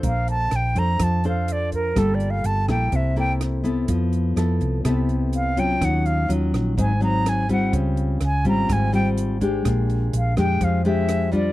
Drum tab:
HH |xxxxxxxx|xxxxxxxx|xxxxxxxx|xxxxxxxx|
SD |--r-r---|r--r--r-|--r-r---|r--r--r-|
BD |o--oo--o|o--oo--o|o--oo--o|o--oo--o|

HH |xxxxxxxx|xxxxxxxx|
SD |--r-r---|r--r--r-|
BD |o--oo--o|o--oo--o|